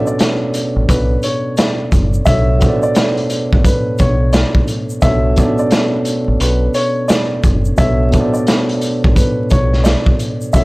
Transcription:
Already playing: tine electric piano B2 B3 C#4 D4 A4 C#5 D5
0.07 upright piano D5, shaker
0.19 snare, closed hi-hat, shaker
0.54 closed hi-hat, shaker
0.76 fingered electric bass A1
0.88 fingered electric bass B1, upright piano B4, kick, closed hi-hat, shaker
1.23 upright piano C#5, closed hi-hat, shaker
1.57 upright piano D5, snare, closed hi-hat, shaker
1.92 fingered electric bass F#1, kick, closed hi-hat, shaker
2.14 shaker
2.25 fingered electric bass B1, tine electric piano B2 B3 D4 A4 C#5, upright piano E5, kick, closed hi-hat, shaker
2.59 tine electric piano B2 B3 D4 A4 C5, kick, closed hi-hat, shaker
2.69 tine electric piano D5
2.83 upright piano D5, shaker
2.95 snare, closed hi-hat, shaker
3.17 closed hi-hat
3.30 closed hi-hat, shaker
3.53 fingered electric bass A1, kick
3.65 upright piano B4, kick, closed hi-hat, shaker
3.98 fingered electric bass B1, upright piano C#5, kick, closed hi-hat, shaker
4.33 upright piano D5, snare, closed hi-hat, shaker
4.55 kick
4.68 closed hi-hat, shaker
4.90 shaker
5.02 fingered electric bass B1, tine electric piano B2 B3 D4 A4 C#5, upright piano E5, kick, closed hi-hat, shaker
5.36 tine electric piano B2 B3 C#4 A4 D5, kick, closed hi-hat, shaker
5.44 tine electric piano D4
5.58 upright piano D5, shaker
5.71 snare, closed hi-hat, shaker
6.05 closed hi-hat, shaker
6.28 fingered electric bass A1
6.40 fingered electric bass B1, upright piano B4, closed hi-hat, shaker
6.74 upright piano C#5, closed hi-hat, shaker
7.08 upright piano D5, snare, closed hi-hat, shaker
7.43 fingered electric bass F#1, kick, closed hi-hat, shaker
7.65 shaker
7.77 fingered electric bass B1, tine electric piano B2 B3 D4 A4 C#5, upright piano E5, kick, closed hi-hat, shaker
8.10 tine electric piano B2 B3 D4 A4 C5, kick, closed hi-hat, shaker
8.20 tine electric piano D5
8.34 upright piano D5, shaker
8.47 snare, closed hi-hat, shaker
8.69 closed hi-hat
8.81 closed hi-hat, shaker
9.04 fingered electric bass A1, kick
9.15 upright piano B4, kick, closed hi-hat, shaker
9.50 fingered electric bass B1, upright piano C#5, kick, closed hi-hat, shaker
9.73 snare
9.84 upright piano D5, snare, closed hi-hat, shaker
10.06 kick
10.19 closed hi-hat, shaker
10.41 shaker
10.53 fingered electric bass B1, tine electric piano B2 B3 D4 A4, upright piano E5, kick, closed hi-hat, shaker
10.57 tine electric piano C#5

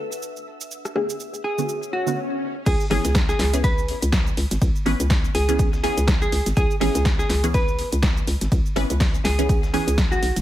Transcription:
Already playing: ambient pad D4 B4 F#5, analog synth pad E5 E6
0.12 shaker
0.22 shaker
0.36 shaker
0.61 shaker
0.71 shaker
0.85 cross-stick, shaker
0.95 synth stab D3 A3 B3 G#4, cross-stick
1.10 shaker
1.20 shaker
1.34 shaker
1.44 hollow-body jazz guitar G#4
1.58 synth stab D3 A3 B3 F#4, shaker
1.69 swell, shaker
1.83 shaker
1.93 hollow-body jazz guitar F#4
2.06 synth stab D3 A3 B3 F#4, shaker
2.66 fm bass C#2, hollow-body jazz guitar G#4, kick, closed hi-hat, crash, ride, shaker
2.80 shaker
2.90 fm bass G#1, synth stab E3 B3 C#4 G#4, hollow-body jazz guitar G#4, cross-stick, open hi-hat, ride
3.05 fm bass C#2, snare, closed hi-hat, shaker
3.15 kick, snare, closed hi-hat, ride, shaker
3.29 hollow-body jazz guitar G#4, snare, shaker
3.39 fm bass C#2, snare, open hi-hat, ride
3.53 synth stab E3 B3 C#4 G#4, closed hi-hat, ride, shaker
3.64 hollow-body jazz guitar B4, kick, closed hi-hat, ride, shaker
3.78 shaker
3.88 open hi-hat, ride
4.02 fm bass C#2, closed hi-hat, shaker
4.12 kick, snare, closed hi-hat, ride, shaker
4.27 shaker
4.37 fm bass C#2, snare, open hi-hat, ride
4.51 fm bass G#1, snare, closed hi-hat, shaker
4.62 fm bass C#2, kick, closed hi-hat, ride, shaker
4.76 shaker
4.86 fm bass G#1, synth stab E3 B3 C#4 B4, cross-stick, open hi-hat, ride
5.00 fm bass C#2, closed hi-hat, shaker
5.10 kick, snare, closed hi-hat, open hi-hat, shaker
5.24 shaker
5.35 fm bass C#2, hollow-body jazz guitar G#4, open hi-hat, ride
5.48 synth stab E3 B3 C#4 G#4, closed hi-hat, shaker
5.59 kick, closed hi-hat, ride, shaker
5.73 snare, shaker
5.83 synth stab E3 B3 C#4 G#4, hollow-body jazz guitar G#4, open hi-hat, ride
5.97 fm bass C#2, closed hi-hat, ride, shaker
6.08 kick, snare, closed hi-hat, ride, shaker
6.22 hollow-body jazz guitar G#4, shaker
6.32 fm bass C#2, snare, open hi-hat, ride
6.46 fm bass G#1, snare, closed hi-hat, shaker
6.57 fm bass C#2, hollow-body jazz guitar G#4, kick, closed hi-hat, ride, shaker
6.71 shaker
6.81 fm bass G#1, synth stab E3 B3 C#4 G#4, hollow-body jazz guitar G#4, cross-stick, open hi-hat, ride
6.95 fm bass C#2, snare, closed hi-hat, shaker
7.05 kick, snare, closed hi-hat, ride, shaker
7.19 hollow-body jazz guitar G#4, snare, shaker
7.29 fm bass C#2, snare, open hi-hat, ride
7.43 synth stab E3 B3 C#4 G#4, closed hi-hat, ride, shaker
7.54 hollow-body jazz guitar B4, kick, closed hi-hat, ride, shaker
7.68 shaker
7.79 open hi-hat, ride
7.92 fm bass C#2, closed hi-hat, shaker
8.03 kick, snare, closed hi-hat, ride, shaker
8.17 shaker
8.27 fm bass C#2, snare, open hi-hat, ride
8.41 fm bass G#1, snare, closed hi-hat, shaker
8.52 fm bass C#2, kick, closed hi-hat, ride, shaker
8.66 shaker
8.76 fm bass G#1, synth stab E3 B3 C#4 B4, cross-stick, open hi-hat, ride
8.90 fm bass C#2, closed hi-hat, shaker
9.00 kick, snare, closed hi-hat, open hi-hat, shaker
9.15 shaker
9.25 fm bass C#2, hollow-body jazz guitar G#4, snare, open hi-hat, ride
9.38 synth stab E3 B3 C#4 G#4, closed hi-hat, shaker
9.49 kick, closed hi-hat, ride, shaker
9.63 snare, shaker
9.73 synth stab E3 B3 C#4 G#4, hollow-body jazz guitar G#4, open hi-hat, ride
9.87 fm bass C#2, closed hi-hat, ride, shaker
9.98 kick, snare, closed hi-hat, ride, shaker
10.12 hollow-body jazz guitar F#4, shaker
10.22 fm bass B1, snare, open hi-hat, ride
10.36 fm bass F#1, snare, closed hi-hat, shaker

